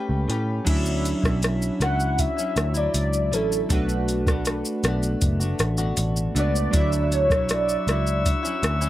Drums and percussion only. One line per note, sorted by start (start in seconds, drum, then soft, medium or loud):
0.30 closed hi-hat medium
0.67 kick loud
0.67 closed hi-hat medium
0.67 crash medium
0.67 shaker medium
0.86 shaker medium
1.05 closed hi-hat soft
1.05 shaker soft
1.24 kick medium
1.24 cross-stick medium
1.24 shaker soft
1.43 cross-stick medium
1.43 closed hi-hat medium
1.43 shaker medium
1.62 shaker medium
1.81 cross-stick medium
1.81 closed hi-hat soft
1.81 shaker soft
2.00 shaker soft
2.19 kick medium
2.19 closed hi-hat medium
2.19 shaker medium
2.39 shaker medium
2.57 cross-stick medium
2.57 closed hi-hat soft
2.57 shaker medium
2.75 shaker medium
2.94 closed hi-hat medium
2.94 shaker medium
3.13 shaker medium
3.33 closed hi-hat medium
3.33 shaker medium
3.52 shaker medium
3.70 kick loud
3.70 closed hi-hat medium
3.70 shaker medium
3.89 shaker soft
4.09 closed hi-hat soft
4.09 shaker soft
4.27 kick medium
4.27 cross-stick medium
4.27 shaker soft
4.45 cross-stick medium
4.45 closed hi-hat medium
4.45 shaker medium
4.65 shaker medium
4.84 cross-stick medium
4.84 closed hi-hat soft
4.84 shaker soft
5.03 shaker soft
5.22 kick medium
5.22 closed hi-hat medium
5.22 shaker medium
5.41 shaker medium
5.59 cross-stick medium
5.59 closed hi-hat medium
5.59 shaker medium
5.78 shaker medium
5.97 closed hi-hat medium
5.97 shaker medium
6.17 shaker medium
6.36 closed hi-hat medium
6.36 shaker medium
6.56 shaker medium
6.74 kick loud
6.74 closed hi-hat medium
6.74 shaker medium
6.93 shaker soft
7.12 closed hi-hat soft
7.12 shaker soft
7.30 kick medium
7.30 cross-stick medium
7.30 shaker soft
7.49 cross-stick medium
7.49 closed hi-hat medium
7.49 shaker medium
7.69 shaker medium
7.88 cross-stick medium
7.88 closed hi-hat soft
7.88 shaker medium
8.07 shaker soft
8.26 kick medium
8.26 closed hi-hat medium
8.26 shaker medium
8.45 shaker medium
8.63 cross-stick medium
8.63 closed hi-hat medium
8.63 shaker medium
8.82 shaker medium